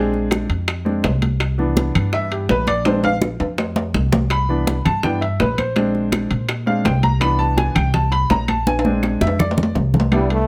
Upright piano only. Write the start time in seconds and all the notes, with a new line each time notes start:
Already playing: G#3 C4 D4 G#4
0.85 G#3 C4 D4
1.58 E3 B3 D4
2.14 E5
2.32 G4
2.50 B4
2.68 D5
2.86 G#3 C4 D4 C5
3.05 F5
4.31 B5
4.49 E3 B3 D4
4.85 A5
5.03 E3 B3 D4 G5
5.21 E5
5.41 B4
5.59 C5
5.76 G#3 C4 D4
6.66 G#3 C4 D4 F5
6.85 G5
7.03 A#5
7.20 E3 B3 D4 B5
7.39 A5
7.57 G#5
7.75 G5
7.94 A5
8.12 B5
8.31 A#5
8.49 A5
8.67 G#5
8.85 G#3 C4 D4
9.21 E5
9.40 D5
10.12 G3 B3 D4 E4